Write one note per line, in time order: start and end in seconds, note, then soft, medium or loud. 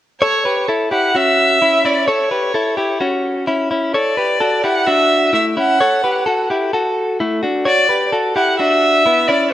0.20 0.46 A4 medium
0.20 0.64 C#5 loud
0.20 0.45 C#5 medium
0.45 0.68 G4 medium
0.45 0.68 B4 medium
0.69 0.91 E4 medium
0.69 0.91 A4 medium
0.91 1.15 E4 medium
0.91 1.14 G4 medium
0.91 1.18 F#5 medium
1.15 1.59 C#4 medium
1.15 1.59 F#4 medium
1.15 1.87 E5 loud
1.62 1.85 C#4 medium
1.62 1.84 E4 medium
1.85 2.09 C#4 medium
1.85 2.07 E4 medium
1.85 2.10 D5 medium
2.08 2.31 A4 medium
2.08 2.31 C#5 loud
2.08 3.01 C#5 medium
2.31 2.54 G4 medium
2.31 2.54 B4 medium
2.54 2.77 E4 medium
2.54 2.77 A4 medium
2.77 3.01 E4 medium
2.77 3.00 G4 medium
3.00 3.45 C#4 medium
3.00 3.45 F#4 medium
3.47 3.70 C#4 medium
3.47 3.69 E4 medium
3.71 3.95 C#4 medium
3.71 3.94 E4 medium
3.94 4.18 A4 medium
3.94 4.17 C#5 medium
3.94 4.65 D5 medium
4.17 4.41 G4 medium
4.17 4.40 B4 medium
4.40 4.64 F#4 medium
4.40 4.64 A4 medium
4.64 4.88 E4 medium
4.64 4.87 G4 medium
4.64 4.88 F#5 loud
4.87 5.31 D4 medium
4.87 5.31 F#4 medium
4.87 5.33 E5 loud
5.33 5.57 A3 medium
5.33 5.56 E4 medium
5.33 5.45 E5 medium
5.57 5.81 C#4 medium
5.57 5.80 E4 medium
5.57 6.46 F#5 loud
5.81 6.04 A4 medium
5.81 6.03 C#5 loud
6.04 6.27 G4 medium
6.04 6.26 B4 medium
6.26 6.50 F#4 medium
6.26 6.50 A4 medium
6.50 6.73 E4 medium
6.50 6.73 G4 medium
6.73 7.18 F#4 medium
6.73 7.17 A4 medium
7.20 7.44 A3 medium
7.20 7.43 E4 medium
7.43 7.67 D4 medium
7.43 7.65 F#4 medium
7.65 7.90 F#4 medium
7.65 7.89 C#5 medium
7.65 8.10 D5 loud
7.89 8.13 G4 medium
7.89 8.12 B4 medium
8.13 8.35 F#4 medium
8.13 8.36 A4 medium
8.35 8.60 E4 medium
8.35 8.59 G4 medium
8.35 8.58 F#5 medium
8.60 9.04 D4 medium
8.60 9.03 F#4 medium
8.60 9.29 E5 loud
9.06 9.30 B3 medium
9.06 9.28 E4 medium
9.28 9.53 C#4 medium
9.28 9.52 E4 medium
9.28 9.53 D5 medium